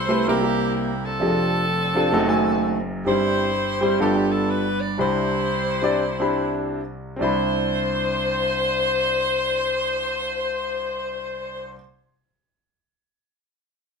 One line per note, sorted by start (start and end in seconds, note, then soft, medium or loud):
0.00 0.24 C2 medium
0.00 0.24 C3 medium
0.00 0.24 E4 medium
0.00 0.24 A4 medium
0.00 0.24 C5 loud
0.08 0.25 A3 medium
0.08 0.25 C4 medium
0.08 0.25 E4 medium
0.08 0.25 G4 medium
0.08 0.26 B4 medium
0.27 1.17 C2 medium
0.27 1.17 C3 medium
0.27 0.39 A#3 medium
0.27 1.17 A#3 medium
0.27 0.39 C4 medium
0.27 0.39 E4 medium
0.27 1.17 E4 medium
0.27 0.40 G4 medium
0.27 0.74 G4 loud
0.27 0.40 A#4 medium
0.41 0.89 A#3 medium
0.41 0.89 C4 medium
0.41 0.90 E4 medium
0.41 0.90 G4 medium
0.41 0.90 A#4 medium
0.75 1.01 G4 medium
1.04 2.85 C4 medium
1.04 2.85 D4 medium
1.04 2.89 A4 loud
1.19 2.10 F1 medium
1.19 2.10 F2 medium
1.19 1.62 C4 medium
1.19 1.62 D4 medium
1.19 1.63 F4 medium
1.19 1.63 G4 medium
1.19 1.28 G#4 medium
1.27 1.66 A4 medium
1.95 2.11 C4 medium
1.95 2.11 D4 medium
1.95 2.11 F4 medium
1.95 2.12 G4 medium
1.95 2.12 A4 medium
2.12 3.02 F#1 medium
2.12 3.02 F#2 medium
2.12 2.24 A3 medium
2.12 2.25 C4 loud
2.12 2.25 D#4 medium
2.12 2.25 F#4 medium
2.12 2.25 A4 loud
2.27 2.75 D#3 medium
2.27 2.75 A3 medium
2.27 2.75 C4 medium
2.27 2.76 F#4 medium
2.27 2.76 G#5 medium
3.05 3.96 G1 medium
3.05 3.96 G2 medium
3.05 3.48 G3 medium
3.05 3.48 C4 medium
3.05 3.13 D#4 medium
3.05 3.97 E4 medium
3.05 3.49 G4 medium
3.05 3.97 G4 medium
3.05 3.97 C5 loud
3.05 3.49 C5 medium
3.12 3.51 E4 medium
3.81 3.98 G3 medium
3.81 3.98 C4 medium
3.81 3.98 E4 medium
3.81 3.98 G4 medium
3.81 3.99 C5 loud
4.00 4.95 G1 medium
4.00 4.95 G2 medium
4.00 4.12 B3 medium
4.00 4.95 B3 medium
4.00 4.12 D4 medium
4.00 4.95 D4 medium
4.00 4.12 F4 medium
4.00 4.30 G4 loud
4.00 4.13 G4 medium
4.00 4.13 A4 medium
4.14 4.64 B3 medium
4.14 4.65 D4 medium
4.14 4.65 F4 medium
4.14 4.65 G4 medium
4.14 4.65 A4 medium
4.31 4.49 A4 medium
4.50 4.80 B4 loud
4.80 4.99 D5 loud
4.98 7.17 C2 medium
4.98 7.17 C3 medium
4.98 5.45 C4 medium
4.98 5.45 D4 medium
4.98 5.45 E4 medium
4.98 6.58 E4 medium
4.98 5.45 G4 medium
4.98 6.58 G4 medium
4.98 6.57 C5 medium
4.98 5.46 B5 medium
5.82 6.01 C4 medium
5.82 6.01 D4 medium
5.82 6.01 E4 medium
5.82 6.02 G4 medium
5.82 6.02 D5 medium
6.20 6.79 C4 medium
6.20 6.80 D4 medium
6.20 6.80 E4 medium
6.20 6.80 G4 medium
6.20 6.80 B5 medium
7.16 11.71 C4 medium
7.16 11.74 D4 medium
7.20 11.75 C2 medium
7.20 11.77 E4 medium
7.20 11.76 C5 loud
7.20 11.79 B5 medium